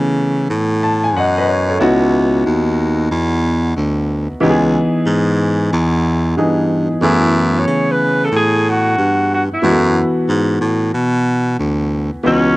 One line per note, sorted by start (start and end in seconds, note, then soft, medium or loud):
0.00 0.47 C#3 medium
0.00 1.76 E3 medium
0.00 1.77 A3 medium
0.00 1.77 B3 medium
0.00 1.16 A4 medium
0.50 1.17 A2 loud
0.83 1.03 A5 medium
1.04 1.15 G#5 medium
1.16 1.77 F#2 medium
1.16 1.36 D#5 medium
1.16 1.47 F#5 medium
1.38 1.68 B4 medium
1.38 1.68 D#5 medium
1.48 1.67 C#5 medium
1.69 2.00 A4 medium
1.69 2.00 C#5 medium
1.79 2.42 C#2 loud
1.79 4.37 B3 medium
1.79 4.38 D#4 medium
1.79 4.37 E4 medium
1.79 4.38 F#4 loud
2.46 3.08 D#2 loud
3.11 3.73 E2 loud
3.76 4.27 D2 medium
4.30 4.35 D2 soft
4.40 4.79 C#2 loud
4.40 6.33 E3 medium
4.40 6.33 B3 medium
4.40 6.34 D#4 medium
4.40 4.50 G4 medium
4.49 6.37 G#4 medium
5.06 5.68 G#2 loud
5.72 6.34 E2 loud
6.37 6.88 G2 medium
6.37 7.00 E3 medium
6.37 7.01 B3 soft
6.37 7.03 D#4 medium
6.37 7.02 G#4 medium
6.91 6.95 G2 soft
7.01 7.64 F#2 loud
7.01 9.59 E3 medium
7.01 9.59 A3 medium
7.01 9.59 B3 medium
7.01 7.60 E4 medium
7.01 9.60 G#4 medium
7.59 7.93 C#5 medium
7.67 8.29 C#3 medium
7.92 8.26 B4 loud
8.25 8.34 A4 medium
8.32 8.94 A2 loud
8.37 8.71 G#4 loud
8.70 9.33 F#4 loud
8.98 9.49 G2 medium
9.34 9.43 F#4 medium
9.51 9.56 G2 soft
9.51 10.14 E4 medium
9.62 10.01 F#2 loud
9.62 12.20 E3 medium
9.62 9.71 G#3 medium
9.62 12.20 B3 medium
9.62 12.21 F#4 medium
9.70 12.23 A4 medium
10.29 10.60 G#2 loud
10.61 10.92 A2 medium
10.94 11.56 B2 loud
11.59 12.10 D2 medium
12.13 12.18 D2 soft
12.23 12.57 C#2 loud
12.23 12.57 E3 medium
12.23 12.57 B3 medium
12.23 12.57 C#4 loud
12.23 12.57 F#4 medium
12.23 12.57 D#5 medium